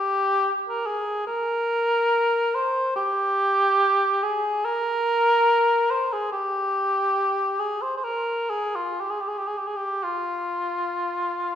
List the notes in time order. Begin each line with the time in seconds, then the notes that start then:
Already playing: G4
0.69 A#4
0.86 G#4
1.27 A#4
2.55 C5
2.96 G4
4.23 G#4
4.65 A#4
5.91 C5
6.13 G#4
6.32 G4
7.59 G#4
7.82 C5
7.97 C5
8.04 A#4
8.50 G#4
8.76 F4
9.00 G4
9.10 G#4
9.20 G4
9.28 G#4
9.38 G4
9.47 G#4
9.58 G4
9.67 G#4
9.76 G4
10.04 F4